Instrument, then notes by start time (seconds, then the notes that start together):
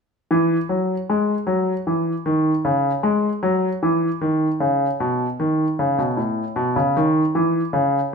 grand piano
0.31 E3
0.69 F#3
1.10 G#3
1.47 F#3
1.87 E3
2.26 D#3
2.65 C#3
3.03 G#3
3.43 F#3
3.83 E3
4.21 D#3
4.60 C#3
5.00 B2
5.40 D#3
5.79 C#3
5.98 B2
6.17 A2
6.56 B2
6.76 C#3
6.97 D#3
7.35 E3
7.73 C#3